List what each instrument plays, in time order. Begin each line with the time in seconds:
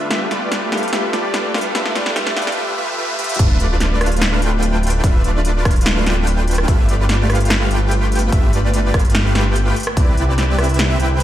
Already playing: grand piano D3 D4 F4 B4 E5 E6, analog synth pad B3 B4, riser
0.09 grand piano G3 D4 F4 A4 B4 E5, supersaw synth A3 F4 G4 B4 E5, analog synth pad F4 G4 A4, snare, closed hi-hat
0.31 supersaw synth A3 F4 G4 B4 D5, snare, closed hi-hat
0.52 snare, closed hi-hat
0.70 grand piano G3 D4 F4 A4 B4, supersaw synth A3 F4 G4 B4 F5, snare, closed hi-hat
0.74 grand piano E5, closed hi-hat
0.83 closed hi-hat
0.88 grand piano G3 D4, closed hi-hat
0.92 supersaw synth A3 F4 G4 B4 E5, grand piano F4 A4 B4 E5, snare, closed hi-hat
1.13 supersaw synth A3 F4 G4 B4 D5, snare, closed hi-hat
1.34 snare, closed hi-hat
1.52 grand piano G3 D4 F4 A4 B4, supersaw synth A3 F4 G4 B4 F5, snare, closed hi-hat
1.56 grand piano E5, closed hi-hat
1.61 closed hi-hat
1.73 grand piano G3 D4 F4 A4 B4, supersaw synth A3 F4 G4 B4 E5, snare, closed hi-hat
1.77 grand piano E5
1.86 snare
1.95 supersaw synth A3 F4 G4 B4 D5, snare, closed hi-hat
2.06 snare
2.14 grand piano G3 D4 F4 A4 B4, supersaw synth A3 F4 G4 B4 E5, snare, closed hi-hat
2.18 grand piano E5
2.27 snare
2.37 supersaw synth A3 F4 G4 B4 D5, snare, closed hi-hat
2.42 closed hi-hat
2.47 snare, closed hi-hat
2.52 closed hi-hat
2.57 supersaw synth A3 F4 G4 B4 E5
2.78 supersaw synth A3 F4 G4 B4 E5
2.98 supersaw synth A3 F4 G4 B4 E5
3.19 supersaw synth A3 F4 G4 B4 E5, closed hi-hat
3.24 closed hi-hat
3.29 closed hi-hat
3.34 closed hi-hat
3.39 detuned saw bass D1, supersaw synth A3 D4 F4 B4 E5, analog synth pad F4 B4, kick, closed hi-hat, crash, sub drop
3.60 detuned saw bass D1, supersaw synth A3 D4 F4 B4 D5, closed hi-hat
3.80 snare, closed hi-hat
4.01 detuned saw bass D1, supersaw synth A3 D4 F4 B4 F5, cross-stick, closed hi-hat
4.06 closed hi-hat
4.12 closed hi-hat
4.17 closed hi-hat
4.22 snare, closed hi-hat
4.42 detuned saw bass D1, supersaw synth A3 D4 F4 B4 G5, closed hi-hat
4.63 closed hi-hat
4.83 closed hi-hat
4.87 closed hi-hat
4.90 closed hi-hat
5.04 detuned saw bass D1, supersaw synth A3 D4 F4 B4 E5, kick, closed hi-hat
5.24 detuned saw bass D1, supersaw synth A3 D4 F4 B4 D5, closed hi-hat
5.45 closed hi-hat
5.65 detuned saw bass D1, supersaw synth A3 D4 F4 B4 F5, kick, cross-stick, closed hi-hat
5.71 closed hi-hat
5.76 closed hi-hat
5.81 closed hi-hat
5.86 snare, closed hi-hat
6.06 detuned saw bass D1, supersaw synth A3 D4 F4 B4 G5, snare, closed hi-hat
6.27 closed hi-hat
6.48 closed hi-hat
6.51 closed hi-hat
6.54 cross-stick, closed hi-hat
6.68 detuned saw bass G1, analog synth pad A3, supersaw synth A3 F4 G4 B4 E5, kick, closed hi-hat
6.89 detuned saw bass G1, supersaw synth A3 F4 G4 B4 D5, closed hi-hat
7.09 snare, closed hi-hat
7.30 detuned saw bass G1, supersaw synth A3 F4 G4 B4 F5, cross-stick, closed hi-hat
7.35 closed hi-hat
7.40 closed hi-hat
7.45 closed hi-hat
7.50 snare, closed hi-hat
7.71 detuned saw bass G1, supersaw synth A3 F4 G4 B4 G5, closed hi-hat
7.91 closed hi-hat
8.12 closed hi-hat
8.15 closed hi-hat
8.19 closed hi-hat
8.32 detuned saw bass G1, supersaw synth A3 F4 G4 B4 E5, kick, closed hi-hat
8.53 detuned saw bass G1, supersaw synth A3 F4 G4 B4 D5, closed hi-hat
8.74 closed hi-hat
8.94 detuned saw bass G1, supersaw synth A3 F4 G4 B4 F5, kick, cross-stick, closed hi-hat
8.99 closed hi-hat
9.05 closed hi-hat
9.10 closed hi-hat
9.15 snare, closed hi-hat
9.35 detuned saw bass G1, supersaw synth A3 F4 G4 B4 G5, snare, closed hi-hat
9.56 closed hi-hat
9.76 analog synth pad D3 E4, closed hi-hat
9.80 closed hi-hat
9.83 cross-stick, closed hi-hat
9.97 detuned saw bass C2, supersaw synth C4 E4 G4 B4 D5, kick, closed hi-hat
10.17 detuned saw bass C2, supersaw synth C4 E4 G4 B4 D5, closed hi-hat
10.38 snare, closed hi-hat
10.59 detuned saw bass C2, supersaw synth C4 E4 G4 B4 E5, cross-stick, closed hi-hat
10.64 closed hi-hat
10.69 closed hi-hat
10.74 closed hi-hat
10.79 snare, closed hi-hat
11.00 detuned saw bass C2, supersaw synth C4 E4 G4 B4 G5, closed hi-hat
11.20 closed hi-hat